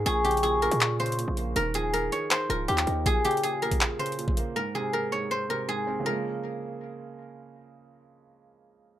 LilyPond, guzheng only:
\new Staff \with { instrumentName = "Guzheng" } { \time 4/4 \key bes \dorian \tempo 4 = 160 aes'8 g'8 aes'8 bes'4 c''4. | bes'8 aes'8 bes'8 des''8 c''8 bes'8 g'8 r8 | aes'8 g'8 aes'8 bes'4 c''4. | bes'8 aes'8 bes'8 des''8 c''8 bes'8 aes'8 r8 |
bes'2. r4 | r1 | }